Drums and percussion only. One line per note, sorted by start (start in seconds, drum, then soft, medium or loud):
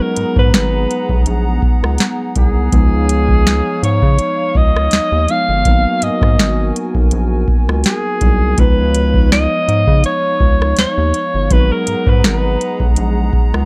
0.17 closed hi-hat medium
0.36 kick loud
0.54 snare loud
0.91 closed hi-hat medium
1.09 kick medium
1.26 closed hi-hat medium
1.62 kick loud
1.84 cross-stick medium
1.98 snare loud
1.98 closed hi-hat medium
2.36 kick medium
2.36 closed hi-hat medium
2.73 kick loud
2.73 closed hi-hat medium
3.09 closed hi-hat medium
3.29 kick loud
3.47 snare loud
3.84 closed hi-hat medium
4.02 kick medium
4.19 closed hi-hat medium
4.55 kick loud
4.76 cross-stick medium
4.91 snare loud
4.91 closed hi-hat medium
5.28 closed hi-hat medium
5.65 kick loud
5.65 closed hi-hat medium
6.02 closed hi-hat medium
6.22 kick loud
6.22 cross-stick medium
6.39 snare loud
6.76 closed hi-hat medium
6.95 kick medium
7.11 closed hi-hat medium
7.48 kick loud
7.69 cross-stick medium
7.84 snare loud
7.84 closed hi-hat medium
8.21 kick loud
8.21 closed hi-hat medium
8.58 kick loud
8.58 closed hi-hat medium
8.95 closed hi-hat medium
9.14 kick loud
9.32 snare loud
9.69 closed hi-hat medium
9.87 kick loud
10.04 closed hi-hat medium
10.40 kick medium
10.62 cross-stick medium
10.77 snare loud
10.77 closed hi-hat medium
11.14 closed hi-hat medium
11.51 kick loud
11.51 closed hi-hat medium
11.87 closed hi-hat medium
12.07 kick medium
12.24 snare loud
12.61 closed hi-hat medium
12.80 kick loud
12.96 closed hi-hat medium
13.33 kick medium
13.54 cross-stick medium